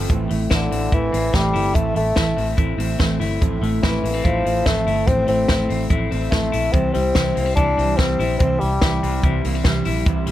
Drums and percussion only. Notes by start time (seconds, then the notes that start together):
0.10 kick, closed hi-hat
0.30 open hi-hat
0.51 kick, snare, closed hi-hat
0.72 open hi-hat
0.92 kick, closed hi-hat
1.14 open hi-hat
1.34 kick, snare, closed hi-hat
1.55 open hi-hat
1.75 kick, closed hi-hat
1.96 open hi-hat
2.16 kick, snare, closed hi-hat
2.38 open hi-hat
2.58 kick, closed hi-hat
2.80 open hi-hat
3.00 kick, snare, closed hi-hat
3.21 open hi-hat
3.42 kick, closed hi-hat
3.63 open hi-hat
3.83 kick, snare, closed hi-hat
4.05 open hi-hat
4.25 kick, closed hi-hat
4.46 open hi-hat
4.66 kick, snare, closed hi-hat
4.87 open hi-hat
5.08 kick, closed hi-hat
5.28 open hi-hat
5.48 kick, snare, closed hi-hat
5.70 open hi-hat
5.90 kick, closed hi-hat
6.12 open hi-hat
6.32 kick, snare, closed hi-hat
6.53 open hi-hat
6.74 kick, closed hi-hat
6.94 open hi-hat
7.15 kick, snare, closed hi-hat
7.37 open hi-hat
7.56 kick, closed hi-hat
7.79 open hi-hat
7.99 kick, snare, closed hi-hat
8.20 open hi-hat
8.40 kick, closed hi-hat
8.61 open hi-hat
8.82 kick, snare, closed hi-hat
9.03 open hi-hat
9.23 kick, closed hi-hat
9.44 open hi-hat
9.64 kick, snare, closed hi-hat
9.85 open hi-hat
10.06 kick, closed hi-hat
10.27 open hi-hat